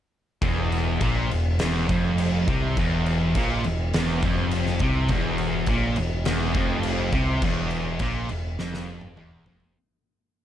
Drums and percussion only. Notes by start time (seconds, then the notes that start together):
0.42 kick, crash
0.72 crash
1.01 kick, crash
1.31 crash
1.59 snare, crash
1.89 kick, crash
2.18 crash
2.47 kick, crash
2.77 kick, crash
3.06 crash
3.35 kick, crash
3.64 crash
3.93 snare, crash
4.22 kick, crash
4.51 crash
4.66 snare
4.79 kick, crash
5.08 kick, crash
5.38 crash
5.66 kick, crash
5.96 crash
6.25 snare, crash
6.54 kick, crash
6.83 crash
7.12 kick, crash
7.42 kick, crash
7.71 crash
7.99 kick, crash
8.29 crash
8.59 snare
8.74 snare
9.01 high tom
9.17 mid tom
9.46 floor tom
9.60 floor tom